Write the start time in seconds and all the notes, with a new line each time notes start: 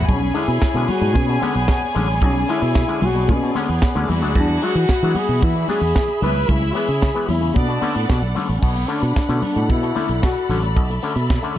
Already playing: C#5 B5
0.08 B1 B2 C#4 G#4 D5 G#5, kick, closed hi-hat, tambourine, muted conga, low conga
0.21 G#3 C#4, muted conga
0.34 D3 G#3 C#4 E4, open hi-hat, tambourine
0.48 B2, tambourine
0.61 muted fingered electric bass stroke, kick, snare, closed hi-hat, tambourine
0.74 B2 D3 G#3 C#4, muted conga
0.88 F#4, open hi-hat, tambourine, high conga, low conga
1.01 G#2 B2, tambourine
1.14 B2 G#3 C#4, kick, closed hi-hat, tambourine, high conga
1.28 B2, tambourine
1.42 D3 G#3 B3 C#4, open hi-hat, tambourine, high conga
1.55 B1
1.68 B2, kick, snare, closed hi-hat, tambourine
1.82 muted conga
1.95 A1 D3 G#3 C#4, open hi-hat, tambourine, high conga, low conga
2.09 G#3 C#4
2.22 B1 B2 C#4, kick, closed hi-hat, tambourine, low conga
2.35 G#3 C#4
2.48 D3 G#3 C#4 E4, open hi-hat, tambourine
2.62 B2, tambourine
2.74 kick, snare, closed hi-hat, tambourine, muted conga
2.88 D3 G#3 C#4, muted conga
3.01 B1 F#4, open hi-hat, tambourine, high conga, low conga
3.15 B2
3.28 B2 G#3 C#4, kick, closed hi-hat, tambourine, muted conga, high conga
3.42 B2
3.55 D3 G#3 B3 C#4, open hi-hat, tambourine, high conga
3.69 E2
3.82 kick, snare, tambourine, muted conga
3.95 D2 D3 G#3 C#4, muted conga
4.08 E2 E3 F#4 E5 F#5 B5, open hi-hat, tambourine, high conga, low conga
4.22 D2 F#3 G#3 D4
4.35 E2 E3 D4, kick, closed hi-hat, tambourine, muted conga, low conga
4.49 G#3 D4
4.62 F#3 G#3 D4 F#4, open hi-hat, tambourine
4.75 E3, tambourine
4.88 kick, snare, closed hi-hat, tambourine
5.03 E3 F#3 G#3 D4
5.15 G#4, open hi-hat, tambourine, high conga, low conga
5.29 B2 E3, tambourine
5.41 E3 G#3 D4 E4, kick, closed hi-hat, tambourine, muted conga, high conga
5.55 E3, tambourine, muted conga
5.68 F#3 G#3 D4 G#4, open hi-hat, tambourine, high conga
5.81 E2
5.95 E3, kick, snare, tambourine
6.08 muted conga
6.22 C#2 E3 G#3 B3 E4 B4 C#5 E5, open hi-hat, tambourine, high conga, low conga
6.35 G#3 B3, tambourine
6.48 C#2 C#3 E4, kick, closed hi-hat, tambourine, low conga
6.61 G#3 B3, muted conga
6.75 E3 G#3 B3 G#4, open hi-hat, tambourine
6.88 C#3, tambourine
7.01 kick, snare, closed hi-hat, tambourine
7.15 E3 G#3 B3
7.29 E2 E4, open hi-hat, tambourine, high conga, low conga
7.41 C#3, tambourine
7.54 B2 A3 B3 C#4 D4 A4 D5 F#5, kick, closed hi-hat, tambourine, high conga
7.68 B2, tambourine
7.82 D3 A3 C#4, open hi-hat, tambourine, high conga
7.96 A2
8.09 B2, kick, snare, tambourine
8.22 B1, muted conga
8.35 D3 A3 C#4, open hi-hat, tambourine, high conga, low conga
8.49 A1 A3 C#4, tambourine
8.58 B2 C#4
8.62 B1 B3 A4 D5 F#5 B5, kick, crash, tambourine
8.75 A3 C#4, closed hi-hat, muted conga
8.88 D3 A3 C#4 D4, open hi-hat, tambourine
9.02 B2, closed hi-hat, tambourine
9.16 kick, snare, tambourine, muted conga
9.29 B2 D3 A3 C#4, closed hi-hat, muted conga
9.42 D4, open hi-hat, tambourine, high conga, low conga
9.55 A2 B2, closed hi-hat, tambourine
9.69 B2 A3 C#4 E4, kick, closed hi-hat, tambourine, high conga
9.82 B2, closed hi-hat, muted conga
9.95 D3 A3 C#4, open hi-hat, tambourine, high conga
10.09 B1, closed hi-hat
10.22 B2 F#4, kick, snare, tambourine, muted conga
10.37 closed hi-hat
10.49 A1 D3 A3 C#4, open hi-hat, tambourine, low conga
10.63 A3 C#4, closed hi-hat
10.76 B1 B2 E5, kick, closed hi-hat, tambourine
10.89 A3 C#4, closed hi-hat, muted conga
11.03 D3 A3 C#4, open hi-hat, tambourine
11.16 B2, closed hi-hat
11.29 kick, snare, tambourine, muted conga
11.43 D3 A3 C#4, closed hi-hat